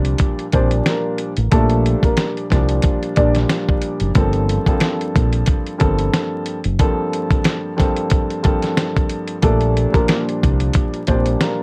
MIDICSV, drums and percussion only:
0, 0, Header, 1, 2, 480
1, 0, Start_track
1, 0, Key_signature, -2, "major"
1, 0, Tempo, 659341
1, 1107, Time_signature, 4, 2, 24, 8
1, 8466, End_track
2, 0, Start_track
2, 0, Title_t, "Drums"
2, 37, Note_on_c, 9, 42, 56
2, 109, Note_off_c, 9, 42, 0
2, 135, Note_on_c, 9, 42, 101
2, 145, Note_on_c, 9, 36, 100
2, 208, Note_off_c, 9, 42, 0
2, 218, Note_off_c, 9, 36, 0
2, 284, Note_on_c, 9, 42, 36
2, 357, Note_off_c, 9, 42, 0
2, 382, Note_on_c, 9, 42, 69
2, 389, Note_on_c, 9, 36, 93
2, 455, Note_off_c, 9, 42, 0
2, 462, Note_off_c, 9, 36, 0
2, 517, Note_on_c, 9, 42, 53
2, 590, Note_off_c, 9, 42, 0
2, 625, Note_on_c, 9, 38, 111
2, 628, Note_on_c, 9, 42, 92
2, 698, Note_off_c, 9, 38, 0
2, 701, Note_off_c, 9, 42, 0
2, 861, Note_on_c, 9, 42, 68
2, 934, Note_off_c, 9, 42, 0
2, 994, Note_on_c, 9, 42, 56
2, 1066, Note_off_c, 9, 42, 0
2, 1102, Note_on_c, 9, 42, 98
2, 1106, Note_on_c, 9, 36, 126
2, 1175, Note_off_c, 9, 42, 0
2, 1179, Note_off_c, 9, 36, 0
2, 1234, Note_on_c, 9, 42, 37
2, 1307, Note_off_c, 9, 42, 0
2, 1353, Note_on_c, 9, 42, 69
2, 1425, Note_off_c, 9, 42, 0
2, 1477, Note_on_c, 9, 36, 95
2, 1484, Note_on_c, 9, 42, 46
2, 1549, Note_off_c, 9, 36, 0
2, 1557, Note_off_c, 9, 42, 0
2, 1578, Note_on_c, 9, 42, 91
2, 1583, Note_on_c, 9, 38, 119
2, 1651, Note_off_c, 9, 42, 0
2, 1656, Note_off_c, 9, 38, 0
2, 1727, Note_on_c, 9, 42, 36
2, 1799, Note_off_c, 9, 42, 0
2, 1822, Note_on_c, 9, 38, 34
2, 1833, Note_on_c, 9, 36, 97
2, 1836, Note_on_c, 9, 42, 74
2, 1895, Note_off_c, 9, 38, 0
2, 1905, Note_off_c, 9, 36, 0
2, 1909, Note_off_c, 9, 42, 0
2, 1956, Note_on_c, 9, 42, 56
2, 2029, Note_off_c, 9, 42, 0
2, 2055, Note_on_c, 9, 42, 104
2, 2065, Note_on_c, 9, 36, 101
2, 2128, Note_off_c, 9, 42, 0
2, 2138, Note_off_c, 9, 36, 0
2, 2204, Note_on_c, 9, 42, 36
2, 2277, Note_off_c, 9, 42, 0
2, 2302, Note_on_c, 9, 42, 70
2, 2309, Note_on_c, 9, 36, 94
2, 2375, Note_off_c, 9, 42, 0
2, 2382, Note_off_c, 9, 36, 0
2, 2437, Note_on_c, 9, 42, 53
2, 2448, Note_on_c, 9, 38, 35
2, 2510, Note_off_c, 9, 42, 0
2, 2521, Note_off_c, 9, 38, 0
2, 2545, Note_on_c, 9, 38, 115
2, 2548, Note_on_c, 9, 42, 91
2, 2618, Note_off_c, 9, 38, 0
2, 2621, Note_off_c, 9, 42, 0
2, 2685, Note_on_c, 9, 36, 94
2, 2758, Note_off_c, 9, 36, 0
2, 2780, Note_on_c, 9, 42, 68
2, 2853, Note_off_c, 9, 42, 0
2, 2914, Note_on_c, 9, 42, 58
2, 2987, Note_off_c, 9, 42, 0
2, 3023, Note_on_c, 9, 42, 94
2, 3027, Note_on_c, 9, 36, 125
2, 3096, Note_off_c, 9, 42, 0
2, 3099, Note_off_c, 9, 36, 0
2, 3155, Note_on_c, 9, 42, 39
2, 3227, Note_off_c, 9, 42, 0
2, 3273, Note_on_c, 9, 42, 70
2, 3345, Note_off_c, 9, 42, 0
2, 3396, Note_on_c, 9, 36, 93
2, 3403, Note_on_c, 9, 42, 47
2, 3469, Note_off_c, 9, 36, 0
2, 3475, Note_off_c, 9, 42, 0
2, 3497, Note_on_c, 9, 42, 93
2, 3503, Note_on_c, 9, 38, 119
2, 3570, Note_off_c, 9, 42, 0
2, 3575, Note_off_c, 9, 38, 0
2, 3647, Note_on_c, 9, 42, 38
2, 3720, Note_off_c, 9, 42, 0
2, 3753, Note_on_c, 9, 36, 99
2, 3758, Note_on_c, 9, 42, 74
2, 3826, Note_off_c, 9, 36, 0
2, 3830, Note_off_c, 9, 42, 0
2, 3877, Note_on_c, 9, 42, 54
2, 3950, Note_off_c, 9, 42, 0
2, 3976, Note_on_c, 9, 42, 106
2, 3986, Note_on_c, 9, 36, 101
2, 4049, Note_off_c, 9, 42, 0
2, 4059, Note_off_c, 9, 36, 0
2, 4124, Note_on_c, 9, 42, 35
2, 4197, Note_off_c, 9, 42, 0
2, 4222, Note_on_c, 9, 42, 71
2, 4229, Note_on_c, 9, 36, 91
2, 4294, Note_off_c, 9, 42, 0
2, 4302, Note_off_c, 9, 36, 0
2, 4357, Note_on_c, 9, 42, 51
2, 4430, Note_off_c, 9, 42, 0
2, 4466, Note_on_c, 9, 38, 108
2, 4469, Note_on_c, 9, 42, 94
2, 4539, Note_off_c, 9, 38, 0
2, 4542, Note_off_c, 9, 42, 0
2, 4701, Note_on_c, 9, 42, 65
2, 4774, Note_off_c, 9, 42, 0
2, 4835, Note_on_c, 9, 42, 59
2, 4907, Note_off_c, 9, 42, 0
2, 4945, Note_on_c, 9, 42, 96
2, 4947, Note_on_c, 9, 36, 123
2, 5017, Note_off_c, 9, 42, 0
2, 5020, Note_off_c, 9, 36, 0
2, 5192, Note_on_c, 9, 42, 67
2, 5265, Note_off_c, 9, 42, 0
2, 5317, Note_on_c, 9, 36, 99
2, 5324, Note_on_c, 9, 42, 46
2, 5389, Note_off_c, 9, 36, 0
2, 5396, Note_off_c, 9, 42, 0
2, 5417, Note_on_c, 9, 42, 94
2, 5422, Note_on_c, 9, 38, 119
2, 5490, Note_off_c, 9, 42, 0
2, 5495, Note_off_c, 9, 38, 0
2, 5660, Note_on_c, 9, 38, 35
2, 5672, Note_on_c, 9, 36, 93
2, 5674, Note_on_c, 9, 42, 76
2, 5733, Note_off_c, 9, 38, 0
2, 5745, Note_off_c, 9, 36, 0
2, 5747, Note_off_c, 9, 42, 0
2, 5796, Note_on_c, 9, 42, 53
2, 5868, Note_off_c, 9, 42, 0
2, 5895, Note_on_c, 9, 42, 105
2, 5905, Note_on_c, 9, 36, 102
2, 5967, Note_off_c, 9, 42, 0
2, 5978, Note_off_c, 9, 36, 0
2, 6043, Note_on_c, 9, 42, 37
2, 6116, Note_off_c, 9, 42, 0
2, 6141, Note_on_c, 9, 42, 72
2, 6149, Note_on_c, 9, 36, 95
2, 6214, Note_off_c, 9, 42, 0
2, 6222, Note_off_c, 9, 36, 0
2, 6277, Note_on_c, 9, 42, 52
2, 6288, Note_on_c, 9, 38, 34
2, 6349, Note_off_c, 9, 42, 0
2, 6361, Note_off_c, 9, 38, 0
2, 6385, Note_on_c, 9, 38, 111
2, 6387, Note_on_c, 9, 42, 93
2, 6457, Note_off_c, 9, 38, 0
2, 6460, Note_off_c, 9, 42, 0
2, 6525, Note_on_c, 9, 36, 91
2, 6531, Note_on_c, 9, 42, 37
2, 6598, Note_off_c, 9, 36, 0
2, 6603, Note_off_c, 9, 42, 0
2, 6620, Note_on_c, 9, 42, 65
2, 6693, Note_off_c, 9, 42, 0
2, 6753, Note_on_c, 9, 42, 56
2, 6826, Note_off_c, 9, 42, 0
2, 6862, Note_on_c, 9, 42, 93
2, 6866, Note_on_c, 9, 36, 122
2, 6935, Note_off_c, 9, 42, 0
2, 6939, Note_off_c, 9, 36, 0
2, 6994, Note_on_c, 9, 42, 39
2, 7067, Note_off_c, 9, 42, 0
2, 7112, Note_on_c, 9, 42, 68
2, 7184, Note_off_c, 9, 42, 0
2, 7236, Note_on_c, 9, 36, 97
2, 7244, Note_on_c, 9, 42, 47
2, 7309, Note_off_c, 9, 36, 0
2, 7316, Note_off_c, 9, 42, 0
2, 7337, Note_on_c, 9, 42, 92
2, 7343, Note_on_c, 9, 38, 118
2, 7410, Note_off_c, 9, 42, 0
2, 7415, Note_off_c, 9, 38, 0
2, 7486, Note_on_c, 9, 42, 36
2, 7559, Note_off_c, 9, 42, 0
2, 7593, Note_on_c, 9, 36, 97
2, 7595, Note_on_c, 9, 42, 73
2, 7665, Note_off_c, 9, 36, 0
2, 7668, Note_off_c, 9, 42, 0
2, 7715, Note_on_c, 9, 42, 53
2, 7788, Note_off_c, 9, 42, 0
2, 7814, Note_on_c, 9, 42, 104
2, 7825, Note_on_c, 9, 36, 103
2, 7887, Note_off_c, 9, 42, 0
2, 7898, Note_off_c, 9, 36, 0
2, 7962, Note_on_c, 9, 42, 36
2, 8034, Note_off_c, 9, 42, 0
2, 8059, Note_on_c, 9, 42, 70
2, 8069, Note_on_c, 9, 36, 93
2, 8132, Note_off_c, 9, 42, 0
2, 8141, Note_off_c, 9, 36, 0
2, 8195, Note_on_c, 9, 42, 52
2, 8268, Note_off_c, 9, 42, 0
2, 8304, Note_on_c, 9, 38, 108
2, 8307, Note_on_c, 9, 42, 93
2, 8377, Note_off_c, 9, 38, 0
2, 8379, Note_off_c, 9, 42, 0
2, 8466, End_track
0, 0, End_of_file